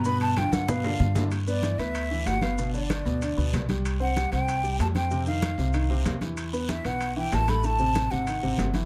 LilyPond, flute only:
\new Staff \with { instrumentName = "Flute" } { \time 4/4 \key g \mixolydian \tempo 4 = 190 b''8 a''8 g''8 fis''8 f''4.~ f''16 r16 | \key g \major r8 d''4 e''4. fis''8 f''8~ | f''8 d''2. r8 | r8 fis''4 g''4. a''8 g''8~ |
g''8 f''2. r8 | r4 e''8 fis''4 g''8 a''8 b''8 | a''4. fis''2 r8 | }